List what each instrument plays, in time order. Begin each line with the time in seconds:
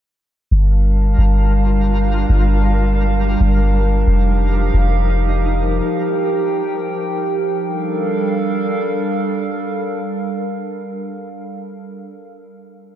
0.51 808-style bass G1, synth texture G3 F4 A#4, ambient pad G3 D4 A#4 F5 A5
1.18 808-style bass G1
2.29 808-style bass G1
3.40 808-style bass G1
4.07 808-style bass F1, ambient pad F3 D#4 G4 F5, synth texture D#4
4.74 808-style bass F1
5.85 ambient pad G5
7.62 ambient pad G3 D4 A4 A#4 F5